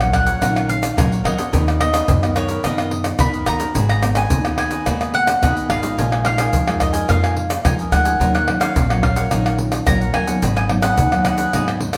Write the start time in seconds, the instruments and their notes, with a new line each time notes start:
Already playing: upright bass A#1, nylon-string guitar A#2, mandolin F#5
0.00 nylon-string guitar F#3 C#4 F4, cavaquinho A#4 C#5 F#5, pandeiro, tamborim, shaker
0.12 cavaquinho D#4 A#4 C#5 F#5, mandolin F#5, pandeiro, tamborim, surdo
0.26 cavaquinho A#4 C#5 F#5, pandeiro, shaker
0.41 upright bass A#1, nylon-string guitar D#3 F#3 C#4 F4, cavaquinho D#4 A#4 C#5 F#5, pandeiro, tamborim, shaker, surdo
0.56 cavaquinho A#4 C#5 F#5, pandeiro, tamborim, shaker
0.69 mandolin F5, muted cavaquinho stroke, pandeiro, shaker
0.83 pandeiro, tamborim, shaker
0.97 upright bass A#1, nylon-string guitar A#2 F#3 C#4 F4, cavaquinho D#4 A#4 C#5 F#5, pandeiro, tamborim, shaker, surdo
1.12 cavaquinho A#4 C#5 F#5, pandeiro, shaker
1.24 upright bass D#3, nylon-string guitar F#3 C#4 F4, cavaquinho D#4 A#4 C#5 F#5, mandolin D#5, pandeiro, tamborim
1.37 nylon-string guitar B3 F#4 A#4, cavaquinho A#4 C#5 F#5, pandeiro, shaker
1.52 upright bass D#2, nylon-string guitar D#3, cavaquinho D#4 A#4 B4 D#5, pandeiro, shaker, surdo
1.67 cavaquinho A#4 B4 D#5, pandeiro, tamborim, shaker
1.80 nylon-string guitar B3 A#4, mandolin D#5, muted cavaquinho stroke, pandeiro, tamborim
1.93 cavaquinho A#4 B4 D#5, pandeiro, tamborim, shaker
2.08 upright bass F#2, nylon-string guitar D#3, pandeiro, shaker, surdo
2.23 nylon-string guitar B3 F#4 A#4, cavaquinho A#4 B4 D#5, pandeiro, tamborim, shaker
2.35 cavaquinho D#4 A#4 B4 D#5, mandolin C#5, pandeiro, tamborim, shaker
2.49 cavaquinho A#4 B4 D#5, pandeiro, shaker
2.64 upright bass F#2, nylon-string guitar D#3 B3 F#4 A#4, cavaquinho D#4 A#4 B4 D#5, mandolin D#5, pandeiro, tamborim, shaker, surdo
2.78 cavaquinho A#4 B4 D#5, pandeiro, tamborim, shaker
2.91 muted cavaquinho stroke, pandeiro
3.04 pandeiro, tamborim, shaker
3.19 upright bass F#2, nylon-string guitar D#3 B3 F#4 A#4, cavaquinho D#4 A#4 B4 D#5, mandolin B5, pandeiro, tamborim, shaker, surdo
3.34 cavaquinho A#4 B4 D#5, pandeiro, shaker
3.46 upright bass D#3, nylon-string guitar B3 F#4 A#4, cavaquinho D#4 A#4 B4 D#5, mandolin A#5, pandeiro, tamborim, shaker
3.60 nylon-string guitar B3 F#4 A#4, cavaquinho A#4 B4 D#5, pandeiro, shaker
3.74 upright bass G#1, nylon-string guitar G#3, cavaquinho F#4 G#4 B4 D#5, pandeiro, shaker, surdo
3.89 cavaquinho G#4 B4 D#5, mandolin A#5, pandeiro, tamborim, shaker
4.03 nylon-string guitar B3 F#4 A#4, muted cavaquinho stroke, pandeiro, tamborim, shaker
4.15 cavaquinho G#4 B4 D#5, mandolin G#5, pandeiro, tamborim, shaker
4.30 upright bass D#2, nylon-string guitar D#3, pandeiro, shaker, surdo
4.45 nylon-string guitar B3 F#4 A#4, cavaquinho G#4 B4 D#5, pandeiro, tamborim, shaker
4.58 cavaquinho F#4 G#4 B4 D#5, mandolin G#5, pandeiro, tamborim
4.71 cavaquinho G#4 B4 D#5, pandeiro, shaker
4.86 upright bass D#2, nylon-string guitar G#3 B3 F#4 A#4, cavaquinho F#4 G#4 B4 D#5, pandeiro, tamborim, shaker, surdo
5.00 cavaquinho G#4 B4 D#5, pandeiro, tamborim, shaker
5.14 mandolin F#5, muted cavaquinho stroke, pandeiro
5.27 pandeiro, tamborim, shaker
5.42 upright bass D#2, nylon-string guitar D#3 B3 F#4 A#4, cavaquinho F#4 G#4 B4 D#5, pandeiro, tamborim, shaker, surdo
5.56 cavaquinho G#4 B4 D#5, pandeiro, shaker
5.69 upright bass G#1, nylon-string guitar B3 F#4 A#4, cavaquinho F#4 G#4 B4 D#5, mandolin F5, pandeiro, tamborim
5.82 nylon-string guitar G#3 D#4 F4, cavaquinho G#4 B4 D#5, pandeiro, shaker
5.97 upright bass A#1, nylon-string guitar A#2, cavaquinho F4 A#4 D#5 G#5, pandeiro, shaker, surdo
6.11 cavaquinho A#4 D#5 G#5, pandeiro, tamborim, shaker
6.25 nylon-string guitar G#3 D#4 F4, mandolin F5, pandeiro, tamborim
6.38 cavaquinho A#4 D#5 G#5, pandeiro, tamborim, shaker
6.53 upright bass F2, nylon-string guitar F3, pandeiro, shaker, surdo
6.67 nylon-string guitar G#3 D#4 F4, cavaquinho A#4 D#5 G#5, pandeiro, tamborim, shaker
6.80 cavaquinho F4 A#4 D#5 G#5, mandolin D#5, pandeiro, tamborim, shaker, surdo
6.93 cavaquinho A#4 D#5 G#5, pandeiro, shaker
7.08 upright bass F2, nylon-string guitar A#2 G#3 D#4 F4, cavaquinho F4 A#4 D#5 G#5, mandolin F5, pandeiro, tamborim, shaker, surdo
7.23 cavaquinho A#4 D#5 G#5, pandeiro, tamborim, shaker
7.36 muted cavaquinho stroke, pandeiro
7.50 pandeiro, tamborim, shaker
7.64 upright bass F2, nylon-string guitar F3 G#3 D#4 F4, cavaquinho F4 A#4 D#5 G#5, mandolin G#5, pandeiro, tamborim, shaker, surdo
7.79 cavaquinho A#4 D#5 G#5, pandeiro, shaker
7.92 upright bass D2, nylon-string guitar G#3 D#4 F4, cavaquinho F4 A#4 D#5 G#5, mandolin F#5, pandeiro, tamborim, shaker
8.05 cavaquinho A#4 D#5 G#5, pandeiro, shaker
8.20 upright bass D#2, nylon-string guitar D#3 F#3 C#4 F4, cavaquinho D#4 A#4 C#5 F#5, pandeiro, shaker, surdo
8.34 cavaquinho A#4 C#5 F#5, mandolin F#5, pandeiro, tamborim, shaker
8.47 nylon-string guitar F#3 C#4 F4, muted cavaquinho stroke, pandeiro, tamborim
8.60 cavaquinho A#4 C#5 F#5, mandolin F5, pandeiro, tamborim, shaker
8.76 upright bass A#1, nylon-string guitar A#2, pandeiro, shaker, surdo
8.89 nylon-string guitar F#3 C#4 F4, cavaquinho A#4 C#5 F#5, pandeiro, tamborim, shaker
9.03 cavaquinho D#4 A#4 C#5 F#5, mandolin F5, pandeiro, tamborim, surdo
9.16 cavaquinho A#4 C#5 F#5, pandeiro, shaker
9.31 upright bass A#1, nylon-string guitar D#3 F#3 C#4 F4, cavaquinho D#4 A#4 C#5 F#5, pandeiro, tamborim, shaker, surdo
9.46 cavaquinho A#4 C#5 F#5, pandeiro, tamborim, shaker
9.58 muted cavaquinho stroke, pandeiro
9.72 pandeiro, tamborim, shaker
9.87 upright bass A#1, nylon-string guitar A#2 F#3 C#4 F4, cavaquinho D#4 A#4 C#5 F#5, mandolin A#5, pandeiro, tamborim, shaker, surdo
10.01 cavaquinho A#4 C#5 F#5, pandeiro, shaker
10.14 upright bass D#2, nylon-string guitar F#3 C#4, cavaquinho D#4 A#4 C#5 F#5, mandolin G#5, pandeiro, tamborim
10.27 nylon-string guitar F#3 B3 D#4, cavaquinho A#4 C#5 F#5, pandeiro, shaker
10.42 upright bass G#1, nylon-string guitar G#2, cavaquinho F#4 G#4 B4 D#5, pandeiro, shaker, surdo
10.57 cavaquinho G#4 B4 D#5, mandolin G#5, pandeiro, tamborim, shaker
10.69 nylon-string guitar F#3 B3 D#4, muted cavaquinho stroke, pandeiro, tamborim
10.82 cavaquinho G#4 B4 D#5, mandolin F#5, pandeiro, tamborim, shaker
10.97 upright bass D#2, nylon-string guitar D#3, pandeiro, shaker, surdo
11.12 nylon-string guitar F#3 B3 D#4, cavaquinho G#4 B4 D#5, pandeiro, tamborim, shaker
11.25 cavaquinho F#4 G#4 B4 D#5, mandolin F#5, pandeiro, tamborim, shaker
11.38 cavaquinho G#4 B4 D#5, pandeiro, shaker
11.53 upright bass D#2, nylon-string guitar G#2 F#3 B3 D#4, cavaquinho F#4 G#4 B4 D#5, pandeiro, tamborim, shaker, surdo
11.68 cavaquinho B4 D#5, pandeiro, tamborim, shaker
11.80 muted cavaquinho stroke, pandeiro
11.93 pandeiro, tamborim, shaker